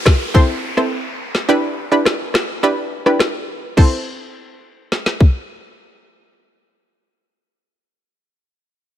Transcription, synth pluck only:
0, 0, Header, 1, 2, 480
1, 0, Start_track
1, 0, Key_signature, 0, "minor"
1, 0, Tempo, 571429
1, 1252, Time_signature, 4, 2, 24, 8
1, 7542, End_track
2, 0, Start_track
2, 0, Title_t, "Synth pluck"
2, 0, Program_c, 0, 84
2, 288, Note_on_c, 0, 60, 93
2, 291, Note_on_c, 0, 64, 86
2, 292, Note_on_c, 0, 69, 82
2, 293, Note_on_c, 0, 72, 104
2, 621, Note_off_c, 0, 60, 0
2, 622, Note_off_c, 0, 64, 0
2, 623, Note_off_c, 0, 69, 0
2, 623, Note_off_c, 0, 72, 0
2, 648, Note_on_c, 0, 60, 77
2, 649, Note_on_c, 0, 64, 71
2, 651, Note_on_c, 0, 69, 70
2, 652, Note_on_c, 0, 72, 85
2, 785, Note_off_c, 0, 60, 0
2, 786, Note_off_c, 0, 64, 0
2, 787, Note_off_c, 0, 69, 0
2, 787, Note_off_c, 0, 72, 0
2, 1248, Note_on_c, 0, 62, 94
2, 1249, Note_on_c, 0, 64, 86
2, 1251, Note_on_c, 0, 67, 84
2, 1253, Note_on_c, 0, 71, 105
2, 1581, Note_off_c, 0, 62, 0
2, 1582, Note_off_c, 0, 64, 0
2, 1583, Note_off_c, 0, 67, 0
2, 1583, Note_off_c, 0, 71, 0
2, 1610, Note_on_c, 0, 62, 81
2, 1611, Note_on_c, 0, 64, 70
2, 1613, Note_on_c, 0, 67, 70
2, 1614, Note_on_c, 0, 71, 88
2, 1746, Note_off_c, 0, 62, 0
2, 1747, Note_off_c, 0, 64, 0
2, 1748, Note_off_c, 0, 67, 0
2, 1749, Note_off_c, 0, 71, 0
2, 2209, Note_on_c, 0, 62, 93
2, 2211, Note_on_c, 0, 64, 81
2, 2212, Note_on_c, 0, 67, 82
2, 2214, Note_on_c, 0, 71, 103
2, 2542, Note_off_c, 0, 62, 0
2, 2542, Note_off_c, 0, 64, 0
2, 2543, Note_off_c, 0, 67, 0
2, 2544, Note_off_c, 0, 71, 0
2, 2570, Note_on_c, 0, 62, 73
2, 2572, Note_on_c, 0, 64, 71
2, 2574, Note_on_c, 0, 67, 70
2, 2575, Note_on_c, 0, 71, 82
2, 2706, Note_off_c, 0, 62, 0
2, 2707, Note_off_c, 0, 64, 0
2, 2708, Note_off_c, 0, 67, 0
2, 2709, Note_off_c, 0, 71, 0
2, 3167, Note_on_c, 0, 60, 86
2, 3169, Note_on_c, 0, 64, 80
2, 3172, Note_on_c, 0, 69, 81
2, 3175, Note_on_c, 0, 72, 97
2, 5947, Note_off_c, 0, 60, 0
2, 5950, Note_off_c, 0, 64, 0
2, 5952, Note_off_c, 0, 69, 0
2, 5955, Note_off_c, 0, 72, 0
2, 7542, End_track
0, 0, End_of_file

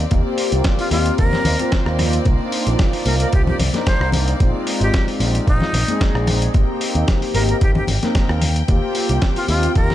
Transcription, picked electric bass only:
0, 0, Header, 1, 3, 480
1, 0, Start_track
1, 0, Key_signature, -3, "major"
1, 0, Tempo, 535714
1, 101, Time_signature, 4, 2, 24, 8
1, 8914, End_track
2, 0, Start_track
2, 0, Title_t, "Picked electric bass"
2, 0, Program_c, 0, 34
2, 102, Note_on_c, 0, 39, 95
2, 184, Note_off_c, 0, 39, 0
2, 468, Note_on_c, 0, 36, 84
2, 541, Note_off_c, 0, 36, 0
2, 815, Note_on_c, 0, 39, 94
2, 979, Note_off_c, 0, 39, 0
2, 1064, Note_on_c, 0, 39, 92
2, 1181, Note_off_c, 0, 39, 0
2, 1296, Note_on_c, 0, 39, 82
2, 1382, Note_off_c, 0, 39, 0
2, 1667, Note_on_c, 0, 39, 98
2, 1956, Note_off_c, 0, 39, 0
2, 2023, Note_on_c, 0, 36, 98
2, 2105, Note_off_c, 0, 36, 0
2, 2390, Note_on_c, 0, 34, 82
2, 2462, Note_off_c, 0, 34, 0
2, 2737, Note_on_c, 0, 36, 94
2, 2900, Note_off_c, 0, 36, 0
2, 2985, Note_on_c, 0, 36, 94
2, 3144, Note_off_c, 0, 36, 0
2, 3218, Note_on_c, 0, 36, 83
2, 3303, Note_off_c, 0, 36, 0
2, 3588, Note_on_c, 0, 36, 98
2, 3877, Note_off_c, 0, 36, 0
2, 3945, Note_on_c, 0, 34, 99
2, 4026, Note_off_c, 0, 34, 0
2, 4307, Note_on_c, 0, 32, 85
2, 4380, Note_off_c, 0, 32, 0
2, 4658, Note_on_c, 0, 34, 96
2, 4820, Note_off_c, 0, 34, 0
2, 4903, Note_on_c, 0, 34, 95
2, 5024, Note_off_c, 0, 34, 0
2, 5136, Note_on_c, 0, 34, 80
2, 5221, Note_off_c, 0, 34, 0
2, 5505, Note_on_c, 0, 34, 92
2, 5795, Note_off_c, 0, 34, 0
2, 5863, Note_on_c, 0, 32, 96
2, 5945, Note_off_c, 0, 32, 0
2, 6227, Note_on_c, 0, 39, 80
2, 6300, Note_off_c, 0, 39, 0
2, 6580, Note_on_c, 0, 32, 95
2, 6741, Note_off_c, 0, 32, 0
2, 6823, Note_on_c, 0, 32, 98
2, 6983, Note_off_c, 0, 32, 0
2, 7061, Note_on_c, 0, 32, 80
2, 7144, Note_off_c, 0, 32, 0
2, 7431, Note_on_c, 0, 39, 97
2, 7718, Note_off_c, 0, 39, 0
2, 7783, Note_on_c, 0, 39, 98
2, 7865, Note_off_c, 0, 39, 0
2, 8149, Note_on_c, 0, 36, 83
2, 8221, Note_off_c, 0, 36, 0
2, 8497, Note_on_c, 0, 39, 93
2, 8660, Note_off_c, 0, 39, 0
2, 8742, Note_on_c, 0, 39, 96
2, 8866, Note_off_c, 0, 39, 0
2, 8914, End_track
3, 0, Start_track
3, 0, Title_t, "Muted picked electric bass strokes"
3, 1186, Note_on_c, 9, 29, 44
3, 1276, Note_off_c, 9, 29, 0
3, 5030, Note_on_c, 9, 29, 43
3, 5119, Note_off_c, 9, 29, 0
3, 8914, End_track
0, 0, End_of_file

